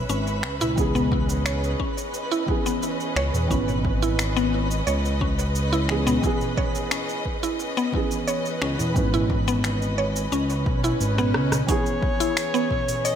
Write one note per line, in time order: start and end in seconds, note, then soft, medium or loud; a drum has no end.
0.00 0.39 E3 medium
0.00 0.39 B3 medium
0.00 0.40 C#4 medium
0.00 11.65 C#4 medium
0.00 0.41 B4 loud
0.00 11.65 B4 medium
0.00 11.70 B4 medium
0.00 0.77 E5 medium
0.09 0.45 G#1 loud
0.09 0.26 C#4 medium
0.09 cabasa medium
0.27 cabasa soft
0.43 1.75 C#2 medium
0.43 finger snap medium
0.43 darbuka ka medium
0.43 darbuka tek soft
0.61 0.77 E4 loud
0.61 darbuka dum medium
0.61 cabasa medium
0.76 2.43 E3 medium
0.76 2.44 B3 medium
0.76 2.44 C#4 medium
0.76 2.45 G#4 loud
0.76 11.68 D#5 medium
0.76 kick loud
0.76 cabasa medium
0.95 1.44 B3 medium
0.95 darbuka dum medium
0.95 cabasa soft
1.12 kick loud
1.12 darbuka tek medium
1.29 darbuka ka medium
1.29 cabasa medium
1.46 1.78 C#5 loud
1.46 finger snap medium
1.46 cabasa medium
1.64 cabasa soft
1.80 1.97 C#4 medium
1.80 kick medium
1.98 cabasa medium
2.13 darbuka ka medium
2.13 cabasa medium
2.31 2.47 E4 loud
2.31 cabasa soft
2.46 3.45 E3 medium
2.46 3.46 B3 medium
2.46 3.47 C#4 medium
2.46 kick loud
2.50 3.47 G#4 medium
2.65 3.15 B3 medium
2.65 darbuka ka medium
2.65 cabasa medium
2.83 cabasa soft
3.00 cabasa soft
3.15 3.31 C#2 loud
3.15 3.49 C#5 loud
3.15 finger snap medium
3.15 darbuka ka medium
3.34 3.47 E2 medium
3.34 darbuka dum medium
3.34 cabasa medium
3.48 4.82 G#1 medium
3.48 5.84 E3 medium
3.48 5.85 B3 medium
3.48 3.67 C#4 medium
3.48 5.85 C#4 medium
3.48 5.86 B4 loud
3.48 kick loud
3.48 cabasa soft
3.69 darbuka dum medium
3.69 cabasa soft
3.85 kick loud
3.85 darbuka tek medium
4.02 4.18 E4 loud
4.02 darbuka ka medium
4.02 cabasa medium
4.19 finger snap medium
4.19 cabasa medium
4.36 4.85 B3 loud
4.36 cabasa soft
4.71 cabasa medium
4.87 6.18 C#2 medium
4.87 5.19 C#5 loud
4.87 cabasa soft
5.05 darbuka ka medium
5.05 cabasa soft
5.21 5.38 C#4 medium
5.21 kick loud
5.39 darbuka tek medium
5.39 cabasa medium
5.55 cabasa medium
5.73 5.88 E4 loud
5.73 cabasa soft
5.89 6.08 E3 medium
5.89 6.08 B3 medium
5.89 6.09 C#4 medium
5.89 6.09 G#4 medium
5.89 finger snap medium
5.89 darbuka ka medium
5.89 darbuka tek soft
6.07 6.56 B3 loud
6.07 darbuka dum medium
6.07 cabasa medium
6.22 7.89 E3 loud
6.22 7.90 B3 medium
6.22 7.90 C#4 medium
6.22 7.91 G#4 loud
6.22 kick loud
6.22 cabasa medium
6.41 darbuka dum medium
6.41 cabasa soft
6.57 6.90 C#5 loud
6.57 kick medium
6.57 darbuka tek medium
6.75 darbuka ka medium
6.75 cabasa medium
6.91 7.08 C#4 medium
6.91 finger snap medium
6.91 cabasa medium
7.09 cabasa soft
7.26 kick medium
7.43 7.59 E4 loud
7.43 cabasa medium
7.59 darbuka ka medium
7.59 cabasa soft
7.77 8.26 B3 loud
7.77 cabasa soft
7.92 8.91 E3 medium
7.92 8.92 B3 medium
7.92 8.92 C#4 medium
7.92 kick medium
7.96 8.93 G#4 medium
8.11 darbuka ka medium
8.11 cabasa medium
8.27 8.60 C#5 loud
8.27 cabasa medium
8.46 cabasa soft
8.62 8.76 C#2 medium
8.62 8.79 C#4 medium
8.62 finger snap medium
8.62 darbuka ka medium
8.79 8.93 E2 medium
8.79 darbuka dum medium
8.79 cabasa medium
8.94 10.27 G#1 medium
8.94 11.30 E3 loud
8.94 11.30 B3 medium
8.94 11.31 C#4 medium
8.94 kick loud
8.94 cabasa medium
8.98 11.32 B4 loud
9.14 9.29 E4 loud
9.14 darbuka dum medium
9.14 cabasa soft
9.30 kick medium
9.30 darbuka tek medium
9.47 9.97 B3 loud
9.47 darbuka ka medium
9.47 cabasa medium
9.64 finger snap medium
9.64 cabasa medium
9.82 cabasa soft
9.98 10.31 C#5 medium
10.16 cabasa medium
10.32 10.66 C#2 medium
10.32 10.49 C#4 medium
10.32 swell medium
10.32 cabasa medium
10.50 darbuka ka medium
10.50 darbuka tek soft
10.50 cabasa soft
10.66 10.94 B1 medium
10.66 kick loud
10.84 11.00 E4 medium
10.84 darbuka tek medium
10.84 cabasa medium
11.00 11.36 G#1 loud
11.00 11.64 B4 medium
11.00 cabasa medium
11.18 11.67 B3 loud
11.18 cross-stick soft
11.18 darbuka dum medium
11.18 cabasa soft
11.34 11.63 C#2 medium
11.34 cross-stick medium
11.34 darbuka ka medium
11.34 darbuka tek soft
11.52 cross-stick medium
11.52 darbuka dum medium
11.52 cabasa medium
11.67 13.15 E3 medium
11.67 13.15 B3 medium
11.67 11.85 C#4 medium
11.67 13.15 C#4 medium
11.67 13.15 G#4 medium
11.67 13.15 B4 medium
11.67 13.06 C#5 loud
11.67 kick loud
11.67 open hi-hat medium
11.67 cabasa medium
11.71 13.15 G#4 loud
11.86 cabasa soft
12.02 kick loud
12.20 12.36 E4 loud
12.20 open hi-hat soft
12.20 darbuka ka medium
12.20 cabasa medium
12.37 finger snap medium
12.37 open hi-hat medium
12.37 cabasa medium
12.54 13.03 B3 loud
12.54 cabasa soft
12.71 kick medium
12.71 darbuka dum medium
12.88 open hi-hat soft
12.88 darbuka dum medium
12.88 cabasa medium
13.04 13.15 C#5 loud
13.04 13.15 D#5 loud
13.04 open hi-hat medium
13.04 darbuka ka medium
13.04 cabasa medium